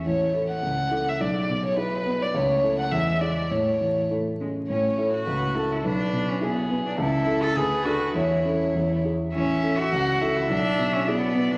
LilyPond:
<<
  \new Staff \with { instrumentName = "Violin" } { \time 2/4 \key a \major \tempo 4 = 104 cis''8. fis''4 e''16 | d''8. cis''16 b'8. d''16 | cis''8. fis''16 e''8 d''8 | cis''4 r4 |
cis''4 b'8 a'8 | b'4 gis'4 | a'4 b'4 | cis''4. r8 |
e''4 fis''8 e''8~ | e''4 d''4 | }
  \new Staff \with { instrumentName = "Grand piano" } { \time 2/4 \key a \major a,,8 <e' a'>8 cis,8 <e' a'>8 | b,,8 b,8 <e' gis'>8 b8 | cis,8 <e' a'>8 e,8 <e' gis'>8 | a,8 e8 <e' a'>8 cis'8 |
a,8 <e' a'>8 cis,8 <e' a'>8 | b,,8 b,8 <e' gis'>8 b8 | cis,8 <e' a'>8 d,8 <d' a'>8 | e,8 <cis' a'>8 e,8 <e' gis'>8 |
a,,8 <e' a'>8 cis,8 <e' a'>8 | b,,8 b,8 <e' gis'>8 b8 | }
  \new Staff \with { instrumentName = "Cello" } { \time 2/4 \key a \major a2 | gis2 | a4 gis4 | a4 a8 gis8 |
cis'8. fis'4 e'16 | d'8. cis'16 b8. d'16 | e'8. a'16 gis'8 fis'8 | e'4. r8 |
cis'8. fis'4 e'16 | d'8. cis'16 b8. d'16 | }
>>